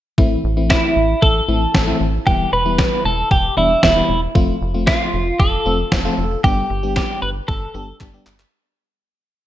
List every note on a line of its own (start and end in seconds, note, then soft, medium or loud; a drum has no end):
0.18 0.36 A1 loud
0.18 0.39 E3 medium
0.18 0.39 A3 medium
0.18 0.39 C4 medium
0.18 0.39 E4 medium
0.18 kick loud
0.44 0.72 A1 medium
0.57 1.06 E3 medium
0.57 1.06 A3 medium
0.57 1.06 C4 medium
0.57 1.06 E4 medium
0.70 1.24 E4 medium
0.70 kick loud
0.70 snare loud
0.96 1.15 A1 loud
1.22 1.41 A1 loud
1.22 1.97 A4 loud
1.22 kick loud
1.48 1.67 A1 medium
1.48 1.62 E3 medium
1.48 1.62 A3 medium
1.48 1.62 C4 medium
1.48 1.62 E4 medium
1.74 1.93 A1 loud
1.74 1.81 E3 medium
1.74 1.81 A3 medium
1.74 1.81 C4 medium
1.74 1.81 E4 medium
1.74 kick loud
1.74 snare loud
1.87 2.08 E3 medium
1.87 2.08 A3 medium
1.87 2.08 C4 medium
1.87 2.08 E4 medium
2.01 2.19 A1 medium
2.27 2.45 E1 loud
2.27 2.47 E3 medium
2.27 2.47 G3 medium
2.27 2.48 B3 medium
2.27 2.47 E4 medium
2.27 2.53 G4 loud
2.27 kick loud
2.53 2.80 E1 medium
2.53 3.05 B4 loud
2.65 3.14 E3 medium
2.65 3.14 G3 medium
2.65 3.14 B3 medium
2.65 3.14 E4 medium
2.79 kick loud
2.79 snare loud
3.05 3.23 E1 loud
3.05 3.31 A4 medium
3.31 3.49 E1 loud
3.31 3.57 G4 medium
3.31 kick loud
3.57 3.75 E1 medium
3.57 3.71 E3 medium
3.57 3.71 G3 medium
3.57 3.71 B3 medium
3.57 3.71 D4 medium
3.57 3.82 E4 medium
3.83 4.01 E1 loud
3.83 3.90 E3 medium
3.83 3.90 G3 medium
3.83 3.90 B3 medium
3.83 3.90 E4 medium
3.83 4.20 E4 medium
3.83 kick loud
3.83 snare loud
3.96 4.17 E3 medium
3.96 4.17 G3 medium
3.96 4.17 B3 medium
3.96 4.17 E4 medium
4.09 4.27 E1 loud
4.35 4.54 F1 loud
4.35 4.56 F3 medium
4.35 4.56 A3 medium
4.35 4.56 C4 medium
4.35 4.56 F4 loud
4.35 kick loud
4.61 4.89 F1 loud
4.74 5.23 F3 medium
4.74 5.23 A3 medium
4.74 5.23 C4 medium
4.74 5.23 F4 medium
4.87 5.41 F4 medium
4.87 kick loud
4.87 snare loud
5.14 5.32 F1 medium
5.40 5.58 F1 loud
5.40 6.40 A4 medium
5.40 kick loud
5.66 5.84 F1 loud
5.66 5.80 F3 medium
5.66 5.80 A3 medium
5.66 5.80 C4 medium
5.66 5.80 F4 medium
5.92 6.10 F1 loud
5.92 5.99 F3 medium
5.92 5.99 A3 medium
5.92 5.99 C4 medium
5.92 5.99 F4 medium
5.92 kick loud
5.92 snare loud
6.05 6.26 F3 medium
6.05 6.26 A3 medium
6.05 6.26 C4 medium
6.05 6.26 F4 loud
6.18 6.36 F1 loud
6.44 6.62 G1 loud
6.44 6.65 G3 medium
6.44 6.65 B3 medium
6.44 6.65 D4 medium
6.44 6.95 G4 medium
6.44 6.65 G4 medium
6.44 kick loud
6.70 6.98 G1 medium
6.83 7.32 G3 medium
6.83 7.32 B3 medium
6.83 7.32 D4 medium
6.83 7.32 G4 medium
6.96 7.22 G4 medium
6.96 kick loud
6.96 snare loud
7.22 7.41 G1 loud
7.22 7.29 B4 medium
7.48 7.67 G1 loud
7.48 7.97 A4 medium
7.48 kick loud
7.74 7.93 G1 medium
7.74 7.88 G3 medium
7.74 7.88 B3 medium
7.74 7.89 D4 medium
7.74 7.88 G4 medium
8.01 8.19 G1 loud
8.01 8.08 G3 medium
8.01 8.08 B3 medium
8.01 8.08 D4 medium
8.01 8.08 G4 medium
8.01 kick loud
8.01 clap medium
8.14 8.34 G3 medium
8.14 8.35 B3 medium
8.14 8.35 D4 medium
8.14 8.35 G4 medium
8.27 8.45 G1 loud
8.27 clap medium
8.40 clap medium